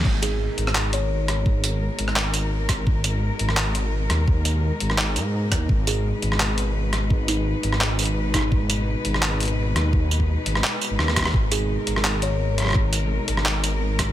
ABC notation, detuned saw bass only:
X:1
M:4/4
L:1/16
Q:1/4=170
K:G#m
V:1 name="Detuned saw bass" clef=bass
G,,,4- G,,, z G,,,8- G,,,2- | G,,,4- G,,, z G,,,8- G,,,2- | G,,,4- G,,, z G,,,8 D,,2- | D,,4- D,, z G,,,4 G,,4 D,,2 |
G,,,4- G,,, z G,,,8- G,,,2- | G,,,4- G,,, z G,,,8- G,,,2- | G,,,4- G,,, z G,,,8 D,,2- | D,,4- D,, z G,,,2 z3 G,,, D,,4 |
G,,,4- G,,, z G,,,8- G,,,2- | G,,,4- G,,, z G,,,8- G,,,2 |]